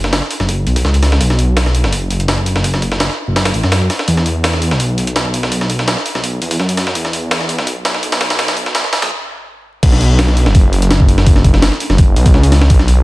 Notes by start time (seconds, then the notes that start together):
Already playing: F#1
0.04 snare
0.13 snare, open hi-hat
0.22 snare
0.31 open hi-hat
0.40 F#1, snare
0.49 kick, open hi-hat
0.67 B1, open hi-hat
0.76 kick, open hi-hat
0.85 C#2, snare
0.94 open hi-hat
1.03 snare, open hi-hat
1.12 snare
1.21 B1, kick, open hi-hat
1.30 snare
1.39 open hi-hat
1.57 snare, open hi-hat
1.66 snare
1.75 open hi-hat
1.84 F#1, snare
1.93 kick, open hi-hat
2.10 open hi-hat
2.20 closed hi-hat
2.28 snare, open hi-hat
2.38 kick
2.46 open hi-hat
2.56 snare
2.64 kick, open hi-hat
2.74 snare
2.82 kick, open hi-hat
2.92 snare
3.00 snare, open hi-hat
3.10 snare
3.28 F#1
3.36 snare, open hi-hat
3.45 snare, open hi-hat
3.54 A1, open hi-hat
3.63 F#2, snare
3.72 snare, open hi-hat
3.81 kick
3.90 snare, open hi-hat
3.99 snare
4.08 E2, kick, open hi-hat
4.17 snare
4.26 open hi-hat
4.44 snare, open hi-hat
4.53 snare
4.62 open hi-hat
4.71 B1, snare
4.80 kick, open hi-hat
4.98 open hi-hat
5.07 closed hi-hat
5.16 snare, open hi-hat
5.25 kick
5.34 open hi-hat
5.43 snare
5.52 kick, open hi-hat
5.61 snare
5.70 kick, open hi-hat
5.79 snare
5.88 snare, open hi-hat
5.97 snare
6.06 open hi-hat
6.15 B1, snare
6.24 kick, open hi-hat
6.41 E2, open hi-hat
6.51 kick, open hi-hat
6.59 F#2, snare
6.69 open hi-hat
6.77 snare, open hi-hat
6.87 snare
6.95 E2, kick, open hi-hat
7.05 snare
7.13 open hi-hat
7.31 snare, open hi-hat
7.41 snare
7.49 open hi-hat
7.58 B1, snare
7.67 kick, open hi-hat
7.85 snare, open hi-hat
7.94 snare
8.03 open hi-hat
8.12 snare, open hi-hat
8.21 snare, open hi-hat
8.30 snare, open hi-hat
8.39 snare, open hi-hat
8.48 snare, open hi-hat
8.57 kick, open hi-hat
8.66 snare
8.75 snare, open hi-hat
8.84 snare
8.93 snare, open hi-hat
9.02 B1, snare, open hi-hat
9.83 B1, kick, open hi-hat, crash
9.92 snare
10.01 open hi-hat
10.19 snare, open hi-hat
10.28 snare
10.37 open hi-hat
10.46 F#1, snare
10.55 kick, open hi-hat
10.73 open hi-hat
10.82 closed hi-hat
10.91 snare, open hi-hat
11.00 kick
11.09 open hi-hat
11.18 snare
11.27 kick, open hi-hat
11.36 snare
11.44 kick, open hi-hat
11.54 snare
11.62 snare, open hi-hat
11.72 snare
11.80 open hi-hat
11.90 F#1, snare
11.98 kick, open hi-hat
12.16 B1, open hi-hat
12.26 kick, open hi-hat
12.34 C#2, snare
12.43 open hi-hat
12.52 snare, open hi-hat
12.61 snare
12.70 B1, kick, open hi-hat
12.79 snare
12.88 open hi-hat